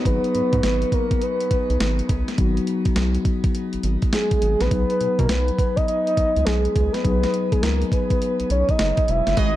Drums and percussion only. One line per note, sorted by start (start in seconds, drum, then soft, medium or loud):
0.05 kick loud
0.05 closed hi-hat medium
0.24 closed hi-hat soft
0.35 closed hi-hat medium
0.53 kick medium
0.53 closed hi-hat medium
0.63 snare loud
0.63 closed hi-hat medium
0.82 closed hi-hat medium
0.92 kick medium
0.92 closed hi-hat medium
1.11 kick medium
1.11 closed hi-hat medium
1.22 closed hi-hat medium
1.41 closed hi-hat medium
1.51 kick medium
1.51 closed hi-hat medium
1.70 closed hi-hat soft
1.80 snare loud
1.80 closed hi-hat medium
1.99 closed hi-hat soft
2.09 kick loud
2.09 closed hi-hat medium
2.28 snare medium
2.28 closed hi-hat medium
2.38 kick loud
2.38 closed hi-hat medium
2.57 closed hi-hat medium
2.67 closed hi-hat medium
2.85 kick loud
2.85 closed hi-hat medium
2.96 snare loud
2.96 closed hi-hat medium
3.15 closed hi-hat soft
3.25 kick medium
3.25 closed hi-hat medium
3.44 kick medium
3.44 closed hi-hat soft
3.55 closed hi-hat medium
3.73 closed hi-hat medium
3.83 closed hi-hat medium
4.02 kick medium
4.02 closed hi-hat soft
4.13 snare loud
4.13 closed hi-hat medium
4.31 kick medium
4.31 closed hi-hat medium
4.42 closed hi-hat medium
4.61 snare medium
4.61 closed hi-hat medium
4.71 kick loud
4.71 closed hi-hat medium
4.90 closed hi-hat medium
5.01 closed hi-hat medium
5.19 kick medium
5.19 closed hi-hat medium
5.29 snare loud
5.29 closed hi-hat medium
5.48 closed hi-hat soft
5.59 kick medium
5.59 closed hi-hat medium
5.77 kick medium
5.77 closed hi-hat medium
5.88 closed hi-hat medium
6.07 closed hi-hat medium
6.17 kick medium
6.17 closed hi-hat medium
6.36 closed hi-hat soft
6.47 snare medium
6.47 closed hi-hat medium
6.65 closed hi-hat soft
6.76 kick loud
6.76 closed hi-hat medium
6.94 snare medium
6.94 closed hi-hat medium
7.05 kick loud
7.05 closed hi-hat medium
7.23 snare medium
7.23 closed hi-hat medium
7.34 closed hi-hat medium
7.52 kick medium
7.52 closed hi-hat medium
7.63 snare loud
7.63 closed hi-hat medium
7.82 closed hi-hat soft
7.92 kick medium
7.92 closed hi-hat medium
8.10 kick medium
8.10 closed hi-hat soft
8.22 closed hi-hat medium
8.40 closed hi-hat medium
8.50 closed hi-hat medium
8.69 kick medium
8.69 closed hi-hat soft
8.79 snare loud
8.79 closed hi-hat medium
8.97 kick medium
8.97 closed hi-hat medium
9.08 closed hi-hat medium
9.27 snare medium
9.27 closed hi-hat medium
9.37 kick loud
9.37 closed hi-hat medium
9.37 tambourine medium